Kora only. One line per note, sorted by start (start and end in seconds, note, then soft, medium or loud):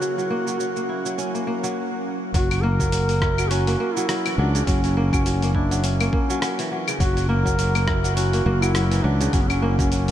0.00 2.23 C#3 medium
0.00 0.17 F#3 medium
0.00 0.30 A#3 medium
0.00 0.59 C#4 medium
0.00 0.12 E4 medium
0.18 0.45 F#3 medium
0.30 0.76 A#3 medium
0.47 0.58 F#3 medium
0.59 1.04 F#3 medium
0.76 1.34 A#3 medium
0.89 2.46 E4 medium
1.05 1.62 F#3 medium
1.18 2.92 C#4 medium
1.34 1.47 A#3 medium
1.47 2.63 A#3 medium
1.64 2.33 F#3 medium
2.35 2.50 F#3 loud
2.51 2.79 F#3 medium
2.63 3.09 A#3 loud
2.80 2.91 F#3 medium
2.92 3.37 F#3 medium
3.09 3.67 A#3 medium
3.22 4.78 E4 medium
3.38 3.96 F#3 medium
3.51 5.25 C#4 medium
3.67 3.80 A#3 medium
3.80 4.96 A#3 loud
3.97 4.08 F#3 loud
4.09 4.37 F#3 medium
4.26 4.58 E3 medium
4.39 4.58 F#3 medium
4.55 6.86 C#3 medium
4.68 4.83 F#3 medium
4.84 5.12 F#3 medium
4.97 5.42 A#3 loud
5.13 5.25 F#3 medium
5.26 5.70 F#3 medium
5.42 6.00 A#3 medium
5.55 7.11 E4 medium
5.71 6.29 F#3 medium
5.84 7.58 C#4 medium
6.01 6.13 A#3 medium
6.13 7.28 A#3 loud
6.30 6.41 F#3 loud
6.42 6.70 F#3 medium
6.59 6.91 E3 medium
6.71 6.91 F#3 medium
6.88 9.19 C#3 medium
7.00 7.15 F#3 loud
7.16 7.44 F#3 medium
7.29 7.74 A#3 loud
7.45 7.57 F#3 loud
7.58 8.03 F#3 medium
7.75 8.33 A#3 medium
7.87 9.44 E4 medium
8.04 8.61 F#3 medium
8.16 9.90 C#4 medium
8.33 8.45 A#3 medium
8.46 9.62 A#3 loud
8.62 8.74 F#3 loud
8.75 9.03 F#3 medium
8.92 9.24 E3 medium
9.04 9.24 F#3 medium
9.21 10.11 C#3 medium
9.33 9.49 F#3 medium
9.50 9.78 F#3 medium
9.62 10.08 A#3 loud
9.79 9.91 F#3 medium
9.92 10.11 F#3 medium